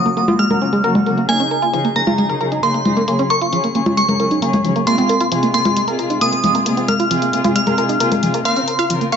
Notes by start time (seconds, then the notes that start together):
Already playing: C#3 F#3 A#3 F#4 D#6
0.06 A#3, closed hi-hat
0.17 C#3 F#3 A#3 F#4, closed hi-hat
0.28 C#3 F#3 A#3 F4 F#4, closed hi-hat, high conga
0.39 G#3 F6, closed hi-hat
0.50 C#3 F#3 A#3 F#4 A#4, closed hi-hat, high conga
0.62 C#3 F#3 A#3 C#4 F#4, closed hi-hat
0.73 G#3, closed hi-hat
0.84 C#3 F#3 A#3 F#4 A#4, closed hi-hat
0.95 G#3, closed hi-hat, high conga
1.06 C#3 F#3 A#3 F#4 A#4, closed hi-hat
1.18 A#3, closed hi-hat
1.29 C#3 F#3 A#3 D#4 G#4 G#5, closed hi-hat
1.40 C#4, closed hi-hat
1.51 A#4, closed hi-hat
1.62 F4, closed hi-hat
1.74 C#3 F3 F#3 D#4 G#4, closed hi-hat
1.85 A#3, closed hi-hat
1.96 C#3 F#3 A#3 D#4 G#4 A#5, closed hi-hat
2.07 C#3 F#3 D#4 F4 G#4, closed hi-hat, high conga
2.18 G#3, closed hi-hat
2.29 C#3 F#3 D#4 G#4 A#4, closed hi-hat
2.41 C#3 F#3 D#4 G#4 A#4, closed hi-hat
2.52 D#4, closed hi-hat
2.63 C#3 F#3 A#3 D#4 G#4 C6, closed hi-hat
2.74 A#3, closed hi-hat
2.85 C#3 F3 F#3 D#4 G#4, closed hi-hat, high conga
2.97 A#3, closed hi-hat
3.08 C#3 F#3 A#3 C#4 G#4, closed hi-hat
3.19 C#4, closed hi-hat
3.30 A#4 C#6, closed hi-hat
3.41 F4, closed hi-hat
3.53 C#3 F3 F#3 C#4 G#4, closed hi-hat
3.64 A#3, closed hi-hat
3.75 C#3 F#3 A#3 C#4 G#4, closed hi-hat
3.86 C#3 F#3 C#4 F4 G#4, closed hi-hat, high conga
3.97 G#3 C#6, closed hi-hat
4.09 C#3 F#3 C#4 G#4 A#4, closed hi-hat, high conga
4.20 C#3 F#3 C#4 G#4 A#4, closed hi-hat
4.31 D#4, closed hi-hat
4.42 C#3 F#3 A#3 C#4 G#4, closed hi-hat
4.53 A#3, closed hi-hat, high conga
4.65 C#3 F3 F#3 C#4 G#4, closed hi-hat
4.76 A#3, closed hi-hat
4.87 C3 G#3 A#3 F4 G#4 C6, closed hi-hat
4.98 C4, closed hi-hat
5.09 A#4, closed hi-hat
5.21 F4, closed hi-hat
5.32 C3 F3 G#3 F4 G#4, closed hi-hat
5.43 A#3, closed hi-hat
5.54 C3 G#3 A#3 F4 G#4 C6, closed hi-hat
5.65 C3 G#3 F4 G#4, closed hi-hat, high conga
5.77 G#3, closed hi-hat
5.88 C3 G#3 F4 G#4 A#4, closed hi-hat
5.99 C3 G#3 F4 G#4 A#4, closed hi-hat
6.10 D#4, closed hi-hat
6.21 C3 G#3 A#3 F4 G#4 D#6, closed hi-hat
6.33 A#3, closed hi-hat
6.44 C3 F3 G#3 F4 G#4, closed hi-hat, high conga
6.55 A#3, closed hi-hat
6.66 C3 G#3 A#3 F4 G#4, closed hi-hat
6.77 C4, closed hi-hat
6.88 A#4 F6, closed hi-hat, high conga
7.00 F4, closed hi-hat
7.11 C3 F3 G#3 F4 G#4, closed hi-hat
7.22 A#3, closed hi-hat
7.33 C3 G#3 A#3 F4 G#4, closed hi-hat
7.44 C3 G#3 F4 G#4, closed hi-hat, high conga
7.56 G#3 F6, closed hi-hat
7.67 C3 G#3 F4 G#4 A#4, closed hi-hat, high conga
7.78 C3 G#3 F4 G#4 A#4, closed hi-hat
7.89 D#4, closed hi-hat
8.00 C3 G#3 A#3 F4 G#4, closed hi-hat
8.12 A#3, closed hi-hat, high conga
8.23 C3 F3 G#3 F4 G#4, closed hi-hat
8.34 A#3, closed hi-hat
8.45 C#3 A#3 C4 F4 A#4 F5 C6, closed hi-hat
8.56 C#4, closed hi-hat
8.68 A#4, closed hi-hat
8.79 F4 F5, closed hi-hat
8.90 C#3 F3 C4 F4 A#4, closed hi-hat
9.01 A#3, closed hi-hat
9.12 C#3 A#3 C4 F4 A#4 F5 C#6, closed hi-hat